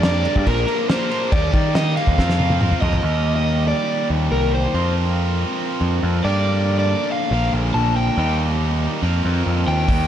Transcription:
Already playing: F2
0.02 G2 D3 G3 A#3 D4 A#4 D5, snare, crash
0.24 G3 A#3 D4 A#4, crash
0.36 G2, kick
0.45 A#1 A#2 D3 F3 A#3 D4 A#4, kick, crash
0.67 A#2 D3 F3 A#3 D4 A#4, crash
0.89 F3 A#3 D4 A#4 C5, snare, crash
1.11 F3 A#3 D4 A#4, crash
1.32 D#2 D#3 G3 A#3 D#4 G4 D5, kick, crash
1.53 D#3 A#3 D#4 G4, kick, crash
1.75 D#3 G3 A#3 D#4 G4 D#5, snare, crash
1.96 A#3 D#4 G4 F5, crash
2.07 D#2, kick
2.17 F2 F3 C4 F4 A#4, kick, snare
2.29 snare
2.39 F3 C4 F4 A#4, high tom
2.50 high tom
2.61 F3 C4 F4 A#4, mid tom
2.71 mid tom
2.81 F2 C4 F4 A#4 D#5, floor tom
2.93 floor tom
3.03 D#2 D#3 G3 A#3 G4 A#4
3.36 D#5
3.68 D5
4.10 D#2
4.31 C2 A#4
4.55 C5
4.74 F2 F3 C4 F4 A#4
5.81 F2
6.03 F2
6.24 G2 D3 G3 A#3 D4 A#4 D5
6.79 D5
7.12 F5
7.31 A#1 A#2 D3 F3 A#3 D4 A#4
7.53 A#1
7.74 A#1 A5
7.97 G5
8.16 D#2 D#3 G3 A#3 D#4 G4
9.02 F2 F3 C4 F4 A#4
9.25 F2
9.46 F2
9.67 D#2 G5
9.87 D#2 D#3 G3 A#3 D#4 G4, kick, open hi-hat

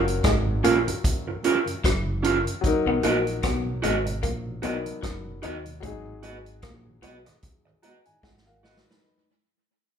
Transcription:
Already playing: F#1 F#3 C#4 F4 A#4
0.08 closed hi-hat
0.24 G#1 G#3, kick, cross-stick, closed hi-hat
0.46 F#2 C#3
0.63 A#1 F#3 A#3 C#4 F4 A#4, closed hi-hat
0.86 F#2 C#3, muted clean electric guitar stroke, closed hi-hat
1.04 kick, closed hi-hat
1.26 F#2 C#3, muted clean electric guitar stroke
1.43 F#3 A#3 C#4 F4 A#4, closed hi-hat
1.66 F#2 C#3, closed hi-hat
1.84 F#1 F#3, kick, cross-stick, closed hi-hat
2.06 F#2 C#3
2.22 F#3 A#3 C#4 F4 A#4, closed hi-hat
2.45 F#2 C#3, closed hi-hat
2.61 F#3 D#4, kick, closed hi-hat
2.67 A#4
2.85 B1 B2 F#3 B3
3.02 A#1 A#3 B3 D#4 F#4 A#4 D#5, closed hi-hat
3.27 closed hi-hat
3.43 B1 B3, kick, cross-stick, closed hi-hat
3.65 B2 F#3
3.82 G#1 G#3 A#3 B3 D#4 F#4 A#4 D#5, closed hi-hat
4.06 B2 F#3, muted clean electric guitar stroke, closed hi-hat
4.23 A#1 A#3, kick, closed hi-hat
4.46 B2 F#3
4.62 B1 F#3 A#3 B3 D4 D#4 F#4 A#4 D#5, closed hi-hat
4.70 D#4
4.86 B2 F#3, closed hi-hat
5.03 F#1 F#3, kick, cross-stick, closed hi-hat
5.26 B2 F#3
5.42 D#2 A#3 B3 D#4 F#4 A#4 D#5, closed hi-hat
5.66 B2 F#3, closed hi-hat
5.80 G#1 F#3 G#3, kick, closed hi-hat
5.84 D#4 G#4
6.06 G#2 D#3
6.23 G#3 B3 F#4 B4 D#5, closed hi-hat
6.46 closed hi-hat
6.62 A#1 A#3, kick, cross-stick, closed hi-hat
6.86 G#2 D#3
7.02 B1 G#3 B3 F#4 B4 D#5, closed hi-hat
7.26 G#2 D#3, muted clean electric guitar stroke, cross-stick, closed hi-hat
7.42 kick, closed hi-hat
7.65 G#2 D#3, muted clean electric guitar stroke
7.83 G#3 B3 F#4 B4 D#5 A#5, closed hi-hat
8.05 G#2 D#3 G#5, closed hi-hat
8.23 G#1 G#3 F#5, kick, snare
8.37 snare
8.46 G#2 D#3 A#4 F5 F#5
8.63 G#3 B3 F#4 B4 D#5, snare
8.77 snare
8.87 G#2 D#3 D#4 B4
8.91 snare

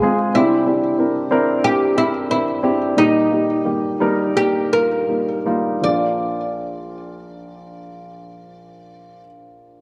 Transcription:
Already playing: G#3 C4 F4 G4 G#4
0.02 G#3 C4 F4 G#4
0.34 C3 G3 C4 D4 E4 G4
0.66 C4 D4 E4 G4
0.98 C4 D4 E4 A#4
1.31 C4 D4 E4 A#4
1.63 C4 D4 E4 G4 A#4
1.97 C4 D4 E4 G4
2.30 C4 D4 E4 A#4
2.63 C4 D4 E4 G4
2.96 A#2 G3 A#3 D#4 G4
3.31 G3 A#3 D#4 G4
3.65 G3 A#3 D#4 G4
4.00 G3 A#3 D#4 A#4
4.35 G3 A#3 D#4 G4
4.72 G3 A#3 D#4 F4 A#4
5.08 G3 A#3 D#4 A#4
5.46 G3 A#3 D#4 F4
5.81 A#1 F3 A#3 D4 D5
5.87 F4

